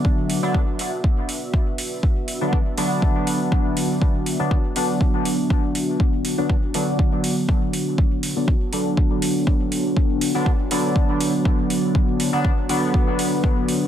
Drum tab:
HH |-o-o-o-o|-o-o-o-o|-o-o-o-o|-o-o-o-o|
BD |o-o-o-o-|o-o-o-o-|o-o-o-o-|o-o-o-o-|

HH |-o-o-o-o|-o-o-o-o|-o-o-o-o|
BD |o-o-o-o-|o-o-o-o-|o-o-o-o-|